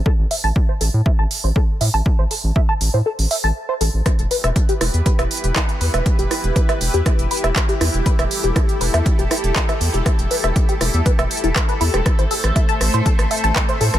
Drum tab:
HH |----o-------o-------o-------o---|----o-------o-----o-o-------o---|x-x-o-x-x-x-o-x-x-x-oxx-x-x-o-x-|x-x-o-x-x-x-o-x-x-x-oxx-x-x-o-x-|
CP |--------------------------------|--------------------------------|------------------------x-------|------------------------x-------|
SD |--------------------------------|--------------------------------|r-----r-----r-----r-----r-----r-|----r-----r-----r-----r-----r---|
BD |o-------o-------o-------o-------|o-------o-----------------------|o-------o-------o-------o-------|o-------o-------o-------o-------|

HH |x-x-o-x-x-x-o-x-x-x-oxx-x-x-o-x-|x-x-o-x-x-x-o-x-x-x-oxx-x-x-o-x-|x-x-o-x-x-x-o-x-x-x-oxx-x-x-o-x-|
CP |------------------------x-------|------------------------x-------|------------------------x-------|
SD |--r-----r-----r-----r-----r-----|r-----r-----r-----r-----r-----r-|r-----r-----r-----r-----r-----r-|
BD |o-------o-------o-------o-------|o-------o-------o-------o-------|o-------o-------o-------o-------|